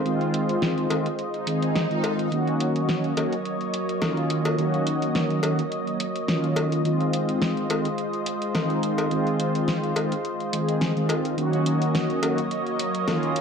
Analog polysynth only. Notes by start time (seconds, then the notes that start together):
0.04 D#3 G#3 C4 F4
0.89 D#3 G#3 C4 F4
1.46 D#3 G#3 C4 G#4
1.90 D#3 G#3 C4 F4
2.31 D#3 A#3 C#4 F#4
3.16 D#3 A#3 C#4 F#4
4.01 D#3 A#3 C#4 F4
4.58 D#3 A#3 C#4 F#4
5.43 D#3 A#3 C#4 F#4
6.28 D#3 A#3 C#4 F4
6.84 D#3 G#3 C4 F4
7.69 D#3 G#3 C4 F4
8.54 D#3 G#3 C4 D#4
9.10 D#3 G#3 C4 F4
9.96 D#3 G#3 C4 F4
10.52 D#3 G#3 C4 G#4
10.96 D#3 G#3 C4 F4
11.37 D#3 A#3 C#4 F#4
12.22 D#3 A#3 C#4 F#4
13.07 D#3 A#3 C#4 F4